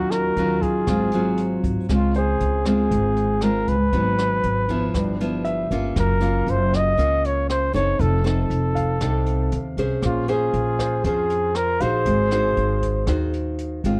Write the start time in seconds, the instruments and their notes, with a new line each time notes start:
Already playing: upright bass D#2, nylon-string guitar D#3 F#3 C#4 F4, alto flute D#4, flugelhorn F#4
0.11 alto flute F#4, flugelhorn A#4, cross-stick, closed hi-hat
0.36 upright bass D#2, nylon-string guitar F#3 C#4 F4, closed hi-hat
0.60 alto flute F4, flugelhorn G#4, kick, closed hi-hat
0.87 upright bass G#1, nylon-string guitar G#2 F#3 C4 F4, kick, cross-stick, closed hi-hat
1.11 nylon-string guitar F#3 C4 F4, closed hi-hat
1.37 closed hi-hat
1.64 upright bass G#1, kick, closed hi-hat
1.89 upright bass C#2, nylon-string guitar C#3 G#3 C4 F4, kick, cross-stick, closed hi-hat
1.93 flugelhorn F4
2.14 flugelhorn G#4, grand piano C5, closed hi-hat
2.40 upright bass C#2, closed hi-hat
2.65 nylon-string guitar G#3 C4 F4, flugelhorn G#4, kick, cross-stick, closed hi-hat
2.91 upright bass G#1, nylon-string guitar G#2, kick, closed hi-hat
3.16 closed hi-hat
3.41 nylon-string guitar G#3 C4 F4, flugelhorn A#4, cross-stick, closed hi-hat
3.67 upright bass C#2, flugelhorn B4, kick, closed hi-hat
3.93 upright bass G#1, nylon-string guitar G#2 F#3 B3 D#4, kick, closed hi-hat
4.18 cross-stick, closed hi-hat
4.43 upright bass G#1, closed hi-hat
4.68 nylon-string guitar F3 B3 E4, kick, closed hi-hat
4.94 upright bass G1, nylon-string guitar G2, kick, cross-stick, closed hi-hat
5.21 nylon-string guitar F3 B3 E4, closed hi-hat
5.45 grand piano E5, closed hi-hat
5.71 upright bass G1, nylon-string guitar A#3 C#4 F4, kick, closed hi-hat
5.96 upright bass F#1, nylon-string guitar F#3, flugelhorn A#4, kick, cross-stick, closed hi-hat
6.21 nylon-string guitar A#3 C#4 F4, closed hi-hat
6.47 upright bass F#1, flugelhorn C5, closed hi-hat
6.73 flugelhorn D#5, kick, cross-stick, closed hi-hat
6.97 upright bass C#2, nylon-string guitar C#3 A#3 C#4 F4, kick, closed hi-hat
7.25 flugelhorn C#5, closed hi-hat
7.49 flugelhorn C5, cross-stick, closed hi-hat
7.73 upright bass F#1, nylon-string guitar C4 D#4 A4, flugelhorn C#5, kick, closed hi-hat
7.99 upright bass F1, nylon-string guitar F3, flugelhorn A4, kick, closed hi-hat
8.24 nylon-string guitar C4 D#4 A4, flugelhorn A4, cross-stick, closed hi-hat
8.50 upright bass F1, closed hi-hat
8.75 grand piano F5, kick, closed hi-hat
9.00 upright bass C2, nylon-string guitar C3 C4 D#4 A4, kick, cross-stick, closed hi-hat
9.26 closed hi-hat
9.52 upright bass D#2, closed hi-hat
9.77 upright bass C2, nylon-string guitar C#4 G#4 C5, kick, closed hi-hat
10.02 upright bass A#1, nylon-string guitar A#3, alto flute C#4, flugelhorn F4, kick, cross-stick, closed hi-hat
10.28 nylon-string guitar C#4 G#4 C5, alto flute F4, flugelhorn G#4, closed hi-hat
10.53 upright bass A#1, closed hi-hat
10.79 grand piano C5, kick, cross-stick, closed hi-hat
11.04 upright bass F2, nylon-string guitar F3 C#4 G#4 C5, alto flute F4, flugelhorn G#4, kick, closed hi-hat
11.30 closed hi-hat
11.55 alto flute F4, flugelhorn A#4, cross-stick, closed hi-hat
11.80 upright bass A#1, nylon-string guitar D#4 F#4 C5, alto flute G#4, flugelhorn C5, grand piano F5, kick, closed hi-hat
12.06 upright bass G#1, nylon-string guitar G#3, kick, closed hi-hat
12.31 nylon-string guitar D#4 F#4 C5, cross-stick, closed hi-hat
12.57 upright bass G#1, closed hi-hat
12.82 kick, closed hi-hat
13.07 upright bass D#2, nylon-string guitar D#3 D#4 F#4 C5, kick, cross-stick, closed hi-hat
13.33 closed hi-hat
13.58 closed hi-hat
13.84 upright bass G#1, nylon-string guitar G#3 C4 F4, kick, closed hi-hat